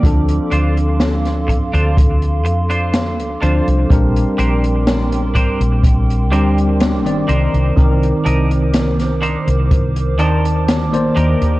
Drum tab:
HH |xxxxxxxxxxxxxxxx|xxxxxxxxxxxxxxxx|xxxxxxxxxxxxxxxx|
SD |----oo------o---|----o-------o---|----oo------o---|
BD |o-----o-o-------|o-----o-o-------|o-------o-------|